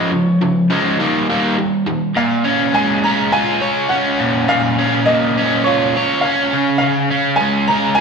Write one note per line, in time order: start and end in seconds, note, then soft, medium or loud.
0.00 0.66 C#5 medium
0.11 0.37 C#3 medium
0.11 0.38 F3 medium
0.41 0.67 C#3 medium
0.41 0.67 F3 medium
0.70 0.97 C#3 medium
0.70 0.97 F3 medium
0.70 0.98 G#3 medium
0.99 1.26 D#3 medium
0.99 1.27 G3 medium
0.99 1.27 A#3 medium
1.30 1.56 D#3 medium
1.30 1.56 G3 medium
1.30 1.56 A#3 loud
1.58 1.84 D#3 medium
1.58 1.84 G3 medium
1.87 2.12 D#3 medium
1.87 2.13 G3 medium
2.17 3.61 A#2 medium
2.17 2.76 F5 medium
2.45 3.04 C#4 medium
2.74 4.19 G#3 medium
2.74 3.04 G#5 medium
3.04 3.90 C#4 medium
3.04 3.30 A#5 medium
3.32 5.66 F4 medium
3.32 3.86 G#5 loud
3.61 5.96 C#5 medium
3.89 4.78 C#4 medium
3.89 4.43 F#5 medium
4.20 4.47 A#2 medium
4.48 5.94 A#2 medium
4.48 5.03 F5 loud
4.79 5.37 C#4 medium
5.06 6.52 A#3 medium
5.06 5.66 D#5 medium
5.37 6.25 C#4 medium
5.64 6.53 F4 medium
5.64 6.18 C#5 medium
5.97 8.01 C#5 medium
6.21 6.62 F5 medium
6.25 7.11 C#4 medium
6.53 6.81 C#3 medium
6.78 8.01 C#3 medium
6.78 7.39 F5 medium
7.11 7.70 C#4 medium
7.36 7.68 G#5 medium
7.40 8.01 G#3 medium
7.68 8.01 C#4 medium
7.68 7.95 A#5 medium
7.95 8.01 G#5 loud